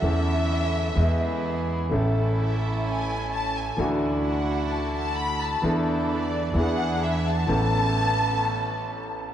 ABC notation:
X:1
M:4/4
L:1/8
Q:1/4=129
K:A
V:1 name="Violin section"
e6- e z | z2 e2 g2 a g | z2 f2 a a b a | z2 d2 f2 e a- |
a6- a z |]
V:2 name="String section"
[CEA]4 [B,EG]4 | [CEA]8 | [DEF]8 | [DEA]4 [DEG]4 |
[B,CA]8 |]
V:3 name="Grand piano"
[E,,E,A,CA]4 [E,,E,G,B,G]4 | [A,,,A,,E,A,CA]8 | [D,,D,E,A,DF]8 | [E,,E,B,DA]4 [E,,E,B,DG]4 |
[A,,,A,,E,B,CA]8 |]
V:4 name="Upright bass" clef=bass
E,,4 E,,4 | A,,,8 | D,,8 | E,,4 E,,4 |
A,,,8 |]